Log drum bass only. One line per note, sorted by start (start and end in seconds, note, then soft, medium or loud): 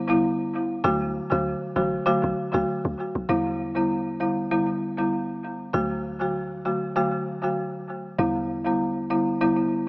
0.85 1.20 D2 loud
1.32 1.55 D2 medium
1.76 1.99 A1 medium
2.24 2.34 B1 medium
2.54 2.65 D2 medium
2.85 2.95 D2 medium
3.15 3.26 B1 medium
3.29 5.70 E2 medium
5.74 8.15 D2 medium
8.19 9.88 E2 medium